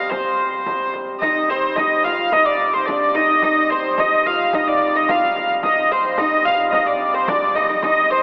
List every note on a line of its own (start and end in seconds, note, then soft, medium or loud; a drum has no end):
0.00 1.21 C3 medium
0.00 1.21 G3 medium
0.00 0.10 F5 medium
0.10 0.90 C5 medium
0.10 frame drum medium
0.39 frame drum soft
0.66 frame drum medium
0.94 frame drum medium
1.20 5.61 C3 medium
1.20 5.61 G3 medium
1.20 1.50 D#4 medium
1.20 1.50 D#5 loud
1.20 frame drum medium
1.50 1.79 C4 medium
1.50 1.78 C5 medium
1.50 frame drum soft
1.76 2.05 D#4 medium
1.76 2.04 D#5 medium
1.76 frame drum medium
2.04 2.32 F4 medium
2.04 2.33 F5 medium
2.04 frame drum medium
2.32 2.87 D#4 medium
2.32 2.47 D#5 loud
2.32 frame drum medium
2.46 2.74 D5 medium
2.61 frame drum soft
2.74 2.87 C5 medium
2.86 3.14 D4 medium
2.86 3.15 D5 medium
2.86 frame drum medium
3.15 3.42 D#4 medium
3.15 3.42 D#5 medium
3.15 frame drum medium
3.42 3.71 D#4 medium
3.42 3.70 D#5 medium
3.42 frame drum medium
3.70 3.99 C4 medium
3.70 3.99 C5 medium
3.70 frame drum soft
3.98 4.26 D#4 medium
3.98 4.26 D#5 medium
3.98 frame drum medium
4.26 4.54 F4 medium
4.26 4.54 F5 medium
4.26 frame drum medium
4.53 4.92 D#4 medium
4.53 4.68 D#5 medium
4.53 frame drum medium
4.68 4.96 D5 medium
4.95 5.09 D#4 medium
4.95 5.11 D#5 medium
5.09 5.47 F4 medium
5.09 5.48 F5 medium
5.09 frame drum medium
5.36 frame drum medium
5.62 8.23 C3 medium
5.62 8.23 G3 medium
5.62 5.90 D#4 medium
5.62 5.92 D#5 medium
5.62 frame drum medium
5.90 6.19 C4 medium
5.90 6.19 C5 medium
5.90 frame drum soft
6.18 6.46 D#4 medium
6.18 6.45 D#5 medium
6.18 frame drum medium
6.45 6.74 F4 medium
6.45 6.58 F5 medium
6.45 frame drum medium
6.71 6.86 D#4 medium
6.71 6.87 D#5 medium
6.71 frame drum medium
6.87 7.14 D4 medium
6.87 7.14 D5 medium
7.01 frame drum soft
7.14 7.28 C4 medium
7.14 7.28 C5 medium
7.28 7.55 D4 medium
7.28 7.55 D5 medium
7.28 frame drum medium
7.55 7.62 D#4 medium
7.55 7.83 D#5 medium
7.55 frame drum medium
7.63 7.68 D#4 medium
7.69 7.83 D#4 medium
7.82 8.23 D#4 medium
7.82 8.11 D#5 loud
7.82 frame drum medium
8.10 8.23 C5 medium
8.10 frame drum soft